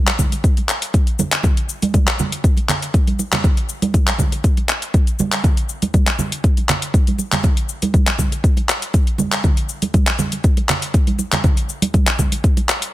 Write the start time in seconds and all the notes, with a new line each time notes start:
0.07 clap, closed hi-hat, muted conga
0.18 kick, high conga, low conga, cabasa
0.32 closed hi-hat, muted conga, cabasa
0.44 kick, cabasa
0.57 closed hi-hat, muted conga
0.69 clap, cabasa
0.82 closed hi-hat, cabasa
0.94 kick, muted conga, cabasa
1.07 closed hi-hat
1.19 muted conga, high conga, low conga, cabasa
1.32 clap, closed hi-hat, cabasa
1.43 kick, muted conga, low conga, cabasa
1.57 closed hi-hat
1.69 cabasa
1.82 closed hi-hat, muted conga, high conga, cabasa
1.94 kick, high conga, cabasa
2.07 clap, closed hi-hat, muted conga
2.19 high conga, low conga, cabasa
2.32 closed hi-hat, muted conga, cabasa
2.44 kick, cabasa
2.57 closed hi-hat, muted conga
2.69 clap, low conga, cabasa
2.82 closed hi-hat, cabasa
2.94 kick, muted conga, cabasa
3.07 closed hi-hat, high conga
3.19 muted conga, cabasa
3.32 clap, closed hi-hat, high conga, low conga, cabasa
3.44 kick, muted conga, low conga, cabasa
3.57 closed hi-hat
3.69 cabasa
3.82 closed hi-hat, muted conga, high conga, cabasa
3.94 kick, high conga, cabasa
4.07 clap, closed hi-hat, muted conga
4.18 kick, high conga, low conga, cabasa
4.32 closed hi-hat, muted conga, cabasa
4.44 kick, cabasa
4.57 closed hi-hat, muted conga
4.69 clap, cabasa
4.82 closed hi-hat, cabasa
4.94 kick, muted conga, cabasa
5.07 closed hi-hat, cabasa
5.19 muted conga, high conga, low conga, cabasa
5.32 clap, closed hi-hat, cabasa
5.44 kick, muted conga, low conga, cabasa
5.57 closed hi-hat
5.69 cabasa
5.82 closed hi-hat, muted conga, high conga, cabasa
5.94 kick, high conga, cabasa
6.07 clap, closed hi-hat, muted conga
6.19 high conga, low conga, cabasa
6.32 closed hi-hat, muted conga, cabasa
6.44 kick, cabasa
6.57 closed hi-hat, muted conga
6.69 clap, low conga, cabasa
6.82 closed hi-hat, cabasa
6.94 kick, muted conga, cabasa
7.07 closed hi-hat, high conga
7.19 muted conga, cabasa
7.32 clap, closed hi-hat, high conga, low conga, cabasa
7.43 kick, muted conga, low conga, cabasa
7.57 closed hi-hat
7.69 cabasa
7.82 closed hi-hat, muted conga, high conga, cabasa
7.94 kick, high conga, cabasa
8.07 clap, closed hi-hat, muted conga
8.18 kick, high conga, low conga, cabasa
8.32 closed hi-hat, muted conga, cabasa
8.44 kick, cabasa
8.57 closed hi-hat, muted conga
8.69 clap, cabasa
8.82 closed hi-hat, cabasa
8.94 kick, muted conga, cabasa
9.07 closed hi-hat
9.18 muted conga, high conga, low conga, cabasa
9.32 clap, closed hi-hat, cabasa
9.44 kick, muted conga, low conga, cabasa
9.57 closed hi-hat
9.69 cabasa
9.82 closed hi-hat, muted conga, high conga, cabasa
9.94 kick, high conga, cabasa
10.07 clap, closed hi-hat, muted conga
10.19 high conga, low conga, cabasa
10.32 closed hi-hat, muted conga, cabasa
10.44 kick, cabasa
10.57 closed hi-hat, muted conga
10.69 clap, low conga, cabasa
10.82 closed hi-hat, cabasa
10.94 kick, muted conga, cabasa
11.07 closed hi-hat, high conga
11.19 muted conga, cabasa
11.32 clap, closed hi-hat, high conga, low conga, cabasa
11.44 kick, muted conga, low conga, cabasa
11.57 closed hi-hat, cabasa
11.69 cabasa
11.82 closed hi-hat, muted conga, high conga, cabasa
11.94 kick, high conga, cabasa
12.07 clap, closed hi-hat, muted conga, cabasa
12.19 kick, high conga, low conga, cabasa
12.32 closed hi-hat, muted conga, cabasa
12.44 kick, cabasa
12.57 closed hi-hat, muted conga, cabasa
12.69 clap, cabasa
12.82 closed hi-hat, cabasa